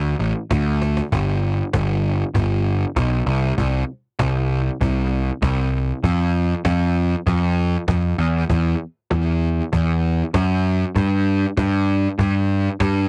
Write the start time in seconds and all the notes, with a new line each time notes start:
Already playing: D2
0.20 A1
0.51 D2, cajon bass, cajon slap
0.82 cajon slap
0.97 cajon slap
1.12 G1, cajon bass
1.73 G1, cajon bass, cajon slap
2.35 G1, cajon bass
2.51 cajon slap
2.96 B1, cajon bass, cajon slap
3.26 C2
3.58 C2, cajon bass
4.19 C2, cajon bass, cajon slap
4.80 C2, cajon bass
5.42 C2, cajon bass, cajon slap
6.03 F2, cajon bass
6.64 F2, cajon bass, cajon slap
7.26 F2, cajon bass
7.88 F2, cajon bass, cajon slap
8.18 E2
8.49 E2, cajon bass
9.11 E2, cajon bass, cajon slap
9.73 E2, cajon bass
10.34 F#2, cajon bass, cajon slap
10.96 G2, cajon bass
11.57 G2, cajon bass, cajon slap
12.19 G2, cajon bass
12.80 G2, cajon bass, cajon slap